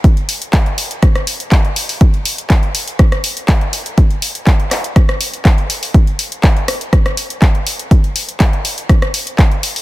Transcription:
\new DrumStaff \with { instrumentName = "Drums" } \drummode { \time 4/4 \tempo 4 = 122 <hh bd>16 hh16 hho16 hh16 <hc hh bd>16 hh16 hho16 hh16 <hh bd ss>16 <hh ss>16 hho16 hh16 <hc hh bd>16 hh16 hho16 hho16 | <hh bd>16 hh16 hho16 hh16 <hc hh bd>16 hh16 hho16 hh16 <hh bd ss>16 <hh ss>16 hho16 hh16 <hc hh bd>16 hh16 hho16 hh16 | <hh bd>16 hh16 hho16 hh16 <hc hh bd>16 hh16 <hc hho ss>16 hh16 <hh bd ss>16 <hh ss>16 hho16 hh16 <hc hh bd>16 hh16 hho16 hho16 | <hh bd>16 hh16 hho16 hh16 <hc hh bd>16 hh16 <hho ss>16 hh16 <hh bd ss>16 <hh ss>16 hho16 hh16 <hc hh bd>16 hh16 hho16 hh16 |
<hh bd>16 hh16 hho16 hh16 <hc hh bd>16 hh16 hho16 hh16 <hh bd ss>16 <hh ss>16 hho16 hh16 <hc hh bd>16 hh16 hho16 hho16 | }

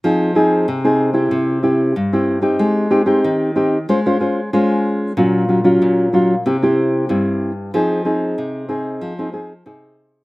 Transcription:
\new Staff \with { instrumentName = "Nylon-string guitar" } { \time 4/4 \key f \minor \tempo 4 = 94 << { <c' ees' aes'>8 <c' ees' aes'>8 r16 <c' ees' aes'>8 <c' e' g'>8. <c' e' g'>8 r16 <c' e' g'>8 <c' ees' g'>16~ | <c' ees' g'>8 <c' ees' g'>16 <c' ees' g'>8. <c' ees' g'>16 r16 <des' f' c''>16 <des' f' c''>16 <des' f' c''>16 r16 <des' f' c''>4 | <ges des' f'>8 <ges des' f'>16 <ges des' f'>8. <ges des' f'>16 r16 <c' e' g'>16 <c' e' g'>8. <c' e' g'>8. r16 | <c' ees' aes'>8 <c' ees' aes'>4 <c' ees' aes'>8. <c' ees' aes'>16 <c' ees' aes'>16 r16 <c' ees' aes'>4 | } \\ { f4 c4 c4 g,4 | aes4 ees4 aes4 aes4 | bes,4 bes,4 c4 g,4 | f4 c4 f4 c4 | } >> }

